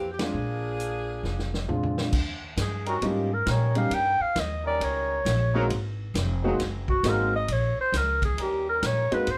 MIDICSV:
0, 0, Header, 1, 8, 480
1, 0, Start_track
1, 0, Tempo, 446761
1, 369, Time_signature, 4, 2, 24, 8
1, 10076, End_track
2, 0, Start_track
2, 0, Title_t, "Clarinet"
2, 0, Program_c, 0, 71
2, 2810, Note_on_c, 0, 68, 77
2, 3080, Note_off_c, 0, 68, 0
2, 3101, Note_on_c, 0, 66, 71
2, 3296, Note_on_c, 0, 67, 72
2, 3312, Note_off_c, 0, 66, 0
2, 3587, Note_on_c, 0, 70, 80
2, 3603, Note_off_c, 0, 67, 0
2, 3771, Note_on_c, 0, 73, 72
2, 3787, Note_off_c, 0, 70, 0
2, 4048, Note_off_c, 0, 73, 0
2, 4055, Note_on_c, 0, 77, 89
2, 4236, Note_on_c, 0, 79, 101
2, 4252, Note_off_c, 0, 77, 0
2, 4533, Note_on_c, 0, 77, 86
2, 4549, Note_off_c, 0, 79, 0
2, 4725, Note_on_c, 0, 75, 82
2, 4741, Note_off_c, 0, 77, 0
2, 5011, Note_off_c, 0, 75, 0
2, 5017, Note_on_c, 0, 74, 93
2, 5200, Note_on_c, 0, 73, 81
2, 5216, Note_off_c, 0, 74, 0
2, 6144, Note_off_c, 0, 73, 0
2, 7409, Note_on_c, 0, 66, 83
2, 7612, Note_on_c, 0, 70, 74
2, 7628, Note_off_c, 0, 66, 0
2, 7900, Note_off_c, 0, 70, 0
2, 7906, Note_on_c, 0, 75, 101
2, 8084, Note_on_c, 0, 73, 87
2, 8100, Note_off_c, 0, 75, 0
2, 8376, Note_off_c, 0, 73, 0
2, 8390, Note_on_c, 0, 72, 91
2, 8567, Note_on_c, 0, 70, 82
2, 8583, Note_off_c, 0, 72, 0
2, 8857, Note_off_c, 0, 70, 0
2, 8862, Note_on_c, 0, 68, 86
2, 9051, Note_on_c, 0, 67, 84
2, 9067, Note_off_c, 0, 68, 0
2, 9333, Note_off_c, 0, 67, 0
2, 9339, Note_on_c, 0, 70, 90
2, 9523, Note_on_c, 0, 73, 98
2, 9539, Note_off_c, 0, 70, 0
2, 9820, Note_on_c, 0, 71, 89
2, 9836, Note_off_c, 0, 73, 0
2, 10004, Note_on_c, 0, 72, 105
2, 10020, Note_off_c, 0, 71, 0
2, 10076, Note_off_c, 0, 72, 0
2, 10076, End_track
3, 0, Start_track
3, 0, Title_t, "Saxophone section"
3, 0, Program_c, 1, 65
3, 125, Note_on_c, 1, 67, 55
3, 212, Note_off_c, 1, 67, 0
3, 226, Note_on_c, 1, 58, 73
3, 228, Note_on_c, 1, 62, 70
3, 232, Note_on_c, 1, 53, 69
3, 233, Note_on_c, 1, 68, 79
3, 1823, Note_off_c, 1, 58, 0
3, 1824, Note_off_c, 1, 62, 0
3, 1826, Note_off_c, 1, 53, 0
3, 1826, Note_off_c, 1, 68, 0
3, 10076, End_track
4, 0, Start_track
4, 0, Title_t, "Trombone section"
4, 0, Program_c, 2, 61
4, 3073, Note_on_c, 2, 70, 86
4, 3075, Note_on_c, 2, 61, 73
4, 3077, Note_on_c, 2, 55, 83
4, 3080, Note_on_c, 2, 63, 76
4, 3190, Note_off_c, 2, 70, 0
4, 3191, Note_off_c, 2, 61, 0
4, 3193, Note_off_c, 2, 55, 0
4, 3194, Note_off_c, 2, 63, 0
4, 3729, Note_on_c, 2, 63, 70
4, 3729, Note_on_c, 2, 70, 84
4, 3731, Note_on_c, 2, 61, 70
4, 3733, Note_on_c, 2, 55, 82
4, 4458, Note_off_c, 2, 63, 0
4, 4458, Note_off_c, 2, 70, 0
4, 4459, Note_off_c, 2, 61, 0
4, 4460, Note_off_c, 2, 55, 0
4, 4987, Note_on_c, 2, 63, 81
4, 4987, Note_on_c, 2, 70, 97
4, 4989, Note_on_c, 2, 61, 79
4, 4992, Note_on_c, 2, 55, 86
4, 5608, Note_off_c, 2, 63, 0
4, 5608, Note_off_c, 2, 70, 0
4, 5609, Note_off_c, 2, 61, 0
4, 5611, Note_off_c, 2, 55, 0
4, 5952, Note_on_c, 2, 70, 103
4, 5953, Note_on_c, 2, 54, 100
4, 5955, Note_on_c, 2, 63, 88
4, 5959, Note_on_c, 2, 60, 89
4, 6069, Note_off_c, 2, 54, 0
4, 6069, Note_off_c, 2, 70, 0
4, 6071, Note_off_c, 2, 63, 0
4, 6073, Note_off_c, 2, 60, 0
4, 6910, Note_on_c, 2, 63, 84
4, 6912, Note_on_c, 2, 60, 77
4, 6914, Note_on_c, 2, 68, 91
4, 6917, Note_on_c, 2, 54, 91
4, 7027, Note_off_c, 2, 63, 0
4, 7028, Note_off_c, 2, 60, 0
4, 7030, Note_off_c, 2, 68, 0
4, 7032, Note_off_c, 2, 54, 0
4, 7562, Note_on_c, 2, 60, 66
4, 7563, Note_on_c, 2, 68, 77
4, 7565, Note_on_c, 2, 54, 72
4, 7568, Note_on_c, 2, 63, 68
4, 8044, Note_off_c, 2, 60, 0
4, 8044, Note_off_c, 2, 68, 0
4, 8045, Note_off_c, 2, 54, 0
4, 8047, Note_off_c, 2, 63, 0
4, 9000, Note_on_c, 2, 61, 57
4, 9001, Note_on_c, 2, 70, 72
4, 9003, Note_on_c, 2, 55, 68
4, 9004, Note_on_c, 2, 63, 64
4, 9731, Note_off_c, 2, 61, 0
4, 9731, Note_off_c, 2, 70, 0
4, 9732, Note_off_c, 2, 55, 0
4, 9733, Note_off_c, 2, 63, 0
4, 10076, End_track
5, 0, Start_track
5, 0, Title_t, "Upright piano"
5, 0, Program_c, 3, 0
5, 198, Note_on_c, 3, 56, 50
5, 200, Note_on_c, 3, 60, 44
5, 202, Note_on_c, 3, 62, 45
5, 205, Note_on_c, 3, 65, 53
5, 351, Note_off_c, 3, 56, 0
5, 352, Note_off_c, 3, 60, 0
5, 353, Note_off_c, 3, 62, 0
5, 354, Note_off_c, 3, 65, 0
5, 1805, Note_on_c, 3, 60, 47
5, 1806, Note_on_c, 3, 56, 52
5, 1809, Note_on_c, 3, 62, 47
5, 1809, Note_on_c, 3, 65, 61
5, 2288, Note_off_c, 3, 56, 0
5, 2288, Note_off_c, 3, 60, 0
5, 2289, Note_off_c, 3, 62, 0
5, 2290, Note_off_c, 3, 65, 0
5, 3247, Note_on_c, 3, 58, 51
5, 3248, Note_on_c, 3, 65, 59
5, 3250, Note_on_c, 3, 55, 57
5, 3252, Note_on_c, 3, 61, 56
5, 3252, Note_on_c, 3, 63, 54
5, 3528, Note_off_c, 3, 58, 0
5, 3529, Note_off_c, 3, 65, 0
5, 3530, Note_off_c, 3, 55, 0
5, 3531, Note_off_c, 3, 61, 0
5, 3531, Note_off_c, 3, 63, 0
5, 4031, Note_on_c, 3, 61, 50
5, 4033, Note_on_c, 3, 58, 45
5, 4034, Note_on_c, 3, 55, 52
5, 4037, Note_on_c, 3, 63, 49
5, 4040, Note_on_c, 3, 67, 56
5, 4188, Note_off_c, 3, 61, 0
5, 4189, Note_off_c, 3, 55, 0
5, 4189, Note_off_c, 3, 58, 0
5, 4191, Note_off_c, 3, 63, 0
5, 4193, Note_off_c, 3, 67, 0
5, 5958, Note_on_c, 3, 56, 66
5, 5959, Note_on_c, 3, 58, 64
5, 5959, Note_on_c, 3, 60, 60
5, 5962, Note_on_c, 3, 63, 61
5, 5963, Note_on_c, 3, 66, 71
5, 6111, Note_off_c, 3, 56, 0
5, 6111, Note_off_c, 3, 58, 0
5, 6111, Note_off_c, 3, 60, 0
5, 6113, Note_off_c, 3, 63, 0
5, 6113, Note_off_c, 3, 66, 0
5, 6919, Note_on_c, 3, 58, 67
5, 6920, Note_on_c, 3, 63, 63
5, 6921, Note_on_c, 3, 56, 69
5, 6922, Note_on_c, 3, 60, 66
5, 6924, Note_on_c, 3, 66, 77
5, 7071, Note_off_c, 3, 58, 0
5, 7071, Note_off_c, 3, 63, 0
5, 7072, Note_off_c, 3, 56, 0
5, 7072, Note_off_c, 3, 60, 0
5, 7073, Note_off_c, 3, 66, 0
5, 7578, Note_on_c, 3, 56, 65
5, 7578, Note_on_c, 3, 58, 70
5, 7578, Note_on_c, 3, 60, 62
5, 7581, Note_on_c, 3, 66, 72
5, 7582, Note_on_c, 3, 63, 68
5, 7852, Note_off_c, 3, 56, 0
5, 7852, Note_off_c, 3, 58, 0
5, 7852, Note_off_c, 3, 60, 0
5, 7854, Note_off_c, 3, 63, 0
5, 7854, Note_off_c, 3, 66, 0
5, 9793, Note_on_c, 3, 58, 53
5, 9793, Note_on_c, 3, 63, 53
5, 9794, Note_on_c, 3, 56, 60
5, 9794, Note_on_c, 3, 60, 59
5, 9795, Note_on_c, 3, 66, 72
5, 9946, Note_off_c, 3, 63, 0
5, 9947, Note_off_c, 3, 56, 0
5, 9947, Note_off_c, 3, 58, 0
5, 9947, Note_off_c, 3, 60, 0
5, 9947, Note_off_c, 3, 66, 0
5, 10076, End_track
6, 0, Start_track
6, 0, Title_t, "Upright bass"
6, 0, Program_c, 4, 32
6, 0, Note_on_c, 4, 41, 68
6, 333, Note_off_c, 4, 41, 0
6, 364, Note_on_c, 4, 34, 75
6, 1284, Note_off_c, 4, 34, 0
6, 1324, Note_on_c, 4, 29, 71
6, 1773, Note_off_c, 4, 29, 0
6, 1802, Note_on_c, 4, 46, 66
6, 2252, Note_off_c, 4, 46, 0
6, 2280, Note_on_c, 4, 39, 75
6, 2750, Note_off_c, 4, 39, 0
6, 2757, Note_on_c, 4, 43, 86
6, 3229, Note_off_c, 4, 43, 0
6, 3241, Note_on_c, 4, 44, 80
6, 3711, Note_off_c, 4, 44, 0
6, 3722, Note_on_c, 4, 46, 89
6, 4187, Note_off_c, 4, 46, 0
6, 4193, Note_on_c, 4, 43, 81
6, 4490, Note_off_c, 4, 43, 0
6, 4679, Note_on_c, 4, 39, 91
6, 5149, Note_off_c, 4, 39, 0
6, 5161, Note_on_c, 4, 37, 80
6, 5630, Note_off_c, 4, 37, 0
6, 5641, Note_on_c, 4, 34, 91
6, 6110, Note_off_c, 4, 34, 0
6, 6121, Note_on_c, 4, 32, 80
6, 6590, Note_off_c, 4, 32, 0
6, 6597, Note_on_c, 4, 29, 92
6, 7068, Note_off_c, 4, 29, 0
6, 7076, Note_on_c, 4, 30, 76
6, 7547, Note_off_c, 4, 30, 0
6, 7556, Note_on_c, 4, 32, 93
6, 8026, Note_off_c, 4, 32, 0
6, 8038, Note_on_c, 4, 34, 80
6, 8331, Note_off_c, 4, 34, 0
6, 8513, Note_on_c, 4, 37, 93
6, 8985, Note_off_c, 4, 37, 0
6, 8994, Note_on_c, 4, 39, 69
6, 9465, Note_off_c, 4, 39, 0
6, 9483, Note_on_c, 4, 46, 84
6, 9773, Note_off_c, 4, 46, 0
6, 9963, Note_on_c, 4, 44, 78
6, 10076, Note_off_c, 4, 44, 0
6, 10076, End_track
7, 0, Start_track
7, 0, Title_t, "Muted upright bass strokes"
7, 4513, Note_on_c, 9, 29, 40
7, 4620, Note_off_c, 9, 29, 0
7, 8352, Note_on_c, 9, 29, 41
7, 8460, Note_off_c, 9, 29, 0
7, 9795, Note_on_c, 9, 29, 41
7, 9902, Note_off_c, 9, 29, 0
7, 10076, End_track
8, 0, Start_track
8, 0, Title_t, "Drums"
8, 204, Note_on_c, 9, 38, 76
8, 207, Note_on_c, 9, 51, 64
8, 312, Note_off_c, 9, 38, 0
8, 314, Note_off_c, 9, 51, 0
8, 857, Note_on_c, 9, 42, 52
8, 964, Note_off_c, 9, 42, 0
8, 1336, Note_on_c, 9, 38, 37
8, 1443, Note_off_c, 9, 38, 0
8, 1493, Note_on_c, 9, 38, 45
8, 1600, Note_off_c, 9, 38, 0
8, 1654, Note_on_c, 9, 38, 56
8, 1761, Note_off_c, 9, 38, 0
8, 1812, Note_on_c, 9, 43, 60
8, 1919, Note_off_c, 9, 43, 0
8, 1969, Note_on_c, 9, 43, 63
8, 2076, Note_off_c, 9, 43, 0
8, 2126, Note_on_c, 9, 38, 77
8, 2233, Note_off_c, 9, 38, 0
8, 2284, Note_on_c, 9, 49, 77
8, 2285, Note_on_c, 9, 36, 72
8, 2392, Note_off_c, 9, 49, 0
8, 2393, Note_off_c, 9, 36, 0
8, 2764, Note_on_c, 9, 38, 64
8, 2766, Note_on_c, 9, 44, 57
8, 2766, Note_on_c, 9, 51, 66
8, 2871, Note_off_c, 9, 38, 0
8, 2873, Note_off_c, 9, 44, 0
8, 2873, Note_off_c, 9, 51, 0
8, 3076, Note_on_c, 9, 51, 45
8, 3184, Note_off_c, 9, 51, 0
8, 3244, Note_on_c, 9, 51, 60
8, 3351, Note_off_c, 9, 51, 0
8, 3721, Note_on_c, 9, 38, 73
8, 3723, Note_on_c, 9, 44, 57
8, 3723, Note_on_c, 9, 51, 69
8, 3829, Note_off_c, 9, 38, 0
8, 3831, Note_off_c, 9, 44, 0
8, 3831, Note_off_c, 9, 51, 0
8, 4031, Note_on_c, 9, 51, 49
8, 4139, Note_off_c, 9, 51, 0
8, 4203, Note_on_c, 9, 51, 67
8, 4310, Note_off_c, 9, 51, 0
8, 4680, Note_on_c, 9, 38, 73
8, 4682, Note_on_c, 9, 44, 57
8, 4682, Note_on_c, 9, 51, 61
8, 4788, Note_off_c, 9, 38, 0
8, 4790, Note_off_c, 9, 44, 0
8, 4790, Note_off_c, 9, 51, 0
8, 5170, Note_on_c, 9, 51, 68
8, 5277, Note_off_c, 9, 51, 0
8, 5651, Note_on_c, 9, 38, 73
8, 5653, Note_on_c, 9, 44, 50
8, 5653, Note_on_c, 9, 51, 66
8, 5759, Note_off_c, 9, 38, 0
8, 5761, Note_off_c, 9, 44, 0
8, 5761, Note_off_c, 9, 51, 0
8, 6127, Note_on_c, 9, 51, 67
8, 6235, Note_off_c, 9, 51, 0
8, 6609, Note_on_c, 9, 38, 74
8, 6611, Note_on_c, 9, 44, 58
8, 6611, Note_on_c, 9, 51, 73
8, 6716, Note_off_c, 9, 38, 0
8, 6718, Note_off_c, 9, 44, 0
8, 6718, Note_off_c, 9, 51, 0
8, 7086, Note_on_c, 9, 38, 39
8, 7088, Note_on_c, 9, 51, 67
8, 7193, Note_off_c, 9, 38, 0
8, 7195, Note_off_c, 9, 51, 0
8, 7394, Note_on_c, 9, 36, 57
8, 7501, Note_off_c, 9, 36, 0
8, 7560, Note_on_c, 9, 38, 65
8, 7562, Note_on_c, 9, 44, 52
8, 7562, Note_on_c, 9, 51, 69
8, 7668, Note_off_c, 9, 38, 0
8, 7670, Note_off_c, 9, 44, 0
8, 7670, Note_off_c, 9, 51, 0
8, 8040, Note_on_c, 9, 51, 70
8, 8147, Note_off_c, 9, 51, 0
8, 8524, Note_on_c, 9, 38, 65
8, 8526, Note_on_c, 9, 44, 50
8, 8526, Note_on_c, 9, 51, 72
8, 8632, Note_off_c, 9, 38, 0
8, 8634, Note_off_c, 9, 44, 0
8, 8634, Note_off_c, 9, 51, 0
8, 8833, Note_on_c, 9, 36, 60
8, 8838, Note_on_c, 9, 51, 51
8, 8940, Note_off_c, 9, 36, 0
8, 8945, Note_off_c, 9, 51, 0
8, 9005, Note_on_c, 9, 51, 61
8, 9112, Note_off_c, 9, 51, 0
8, 9481, Note_on_c, 9, 38, 67
8, 9483, Note_on_c, 9, 44, 64
8, 9483, Note_on_c, 9, 51, 69
8, 9589, Note_off_c, 9, 38, 0
8, 9591, Note_off_c, 9, 44, 0
8, 9591, Note_off_c, 9, 51, 0
8, 9797, Note_on_c, 9, 51, 49
8, 9904, Note_off_c, 9, 51, 0
8, 9958, Note_on_c, 9, 51, 66
8, 10066, Note_off_c, 9, 51, 0
8, 10076, End_track
0, 0, End_of_file